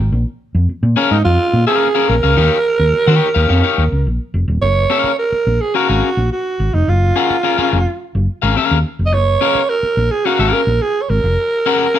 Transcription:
0.12 A#1
0.55 F2
0.69 muted fingered electric bass stroke
0.83 A#2
0.96 C#4 G#4 A#4 F5
1.11 G#2 D#4
1.25 F2 F4
1.53 A#2
1.67 C#4 G#4 A#4 F5
1.95 C#4 G#4 A#4 F5
2.09 A#1 A#4
2.23 C#2 C#4 G#4 A#4 F5
2.37 D#2 D#4 G4 C#5 F5
2.79 D#2
2.93 muted fingered electric bass stroke
3.07 D#3 D#4 G4 C#5 G5
3.35 D#2 D#4 G4 C#5 F5
3.49 F2 D#4 G4 C#5 F5
3.63 D#4 G4 C#5 F5
3.78 D#2
3.92 C#2
4.06 A#1
4.34 F1
4.48 D#1
4.62 F#1 C#5
4.90 C#4 G#4 A#4 F5
5.04 muted fingered electric bass stroke
5.19 A#4
5.32 muted fingered electric bass stroke
5.47 A#1
5.61 G#4
5.75 C#4 F#4 G#4 A#4 F5
5.88 G#1 C#4 G#4 A#4 F5
6.17 A#1
6.32 F#4
6.60 G#1
6.74 F1 D#4
6.88 F#1 F4
7.16 C#4 G#4 A#4 F#5
7.30 muted fingered electric bass stroke
7.43 C#4 G#4 A#4 F5
7.58 C#4 G#4 A#4 F5, muted fingered electric bass stroke
7.73 F1
8.15 F#1
8.42 G#1 C#4 G#4 A#4 F5
8.56 C#4 G#4 A#4 F5, muted fingered electric bass stroke
8.71 D#2
8.99 F1
9.06 D#5
9.13 F#1 C#5
9.41 C#4 G#4 A#4 F5
9.55 muted fingered electric bass stroke
9.69 A#4
9.83 muted fingered electric bass stroke
9.97 A#1
10.11 G#4
10.25 C#4 F#4 G#4 A#4 F5
10.39 G#1 C#4 G#4 A#4 F5
10.53 A#4
10.67 A#1
10.82 G#4
11.02 C#5
11.10 G#1 A#4
11.24 F1
11.66 C#4 G#4 A#4 F#5
11.94 C#4 G#4 A#4 F5

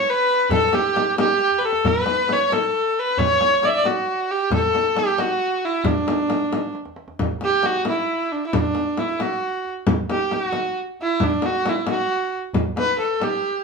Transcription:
Already playing: C#5
0.09 B4
0.49 A4, tombak dum, frame drum
0.72 G4, tombak tek, frame drum
0.94 tombak tek, frame drum
1.16 G4, tombak tek, frame drum
1.38 tombak tek
1.50 tombak ka
1.58 B4, tombak tek
1.65 A4
1.72 tombak ka
1.84 B4, tombak dum, frame drum
1.95 tombak ka
2.06 tombak tek, frame drum
2.28 tombak tek, frame drum
2.33 C#5
2.39 tombak ka
2.50 A4, tombak tek, frame drum
2.99 B4
3.17 C#5, tombak dum, frame drum
3.41 tombak tek, frame drum
3.62 D5, tombak tek, frame drum
3.66 E5
3.73 D5, tombak ka
3.84 F#4, tombak tek, frame drum
4.31 G4
4.50 A4, tombak dum, frame drum
4.62 tombak ka
4.73 tombak tek, frame drum
4.95 G4, tombak tek, frame drum
5.07 tombak ka
5.18 F#4, tombak tek, frame drum
5.64 E4
5.84 D4, tombak dum, frame drum
6.07 tombak tek, frame drum
6.29 tombak tek, frame drum
6.40 tombak ka
6.52 tombak tek, frame drum
6.75 tombak tek
6.85 tombak ka
6.96 tombak tek
7.08 tombak ka
7.19 frame drum, tombak dum
7.41 G4, tombak tek, frame drum
7.63 F#4, tombak tek, frame drum
7.76 tombak ka
7.85 E4, tombak tek, frame drum
8.31 D4, tombak ka
8.47 E4
8.53 D4, frame drum, tombak dum
8.75 tombak tek, frame drum
8.97 E4, tombak tek, frame drum
9.09 tombak ka
9.19 F#4, tombak tek, frame drum
9.65 tombak ka
9.87 frame drum, tombak dum
10.09 G4, tombak tek, frame drum
10.31 G4, tombak tek, frame drum
10.44 F#4, tombak ka
10.53 tombak tek, frame drum
10.99 E4, tombak ka
11.20 D4, frame drum, tombak dum
11.42 F#4, tombak tek, frame drum
11.66 E4, frame drum
11.87 F#4, tombak tek, frame drum
12.33 tombak ka
12.53 tombak dum, frame drum
12.65 tombak ka
12.76 B4, tombak tek, frame drum
12.99 A4, tombak tek
13.10 tombak ka
13.20 G4, tombak tek, frame drum

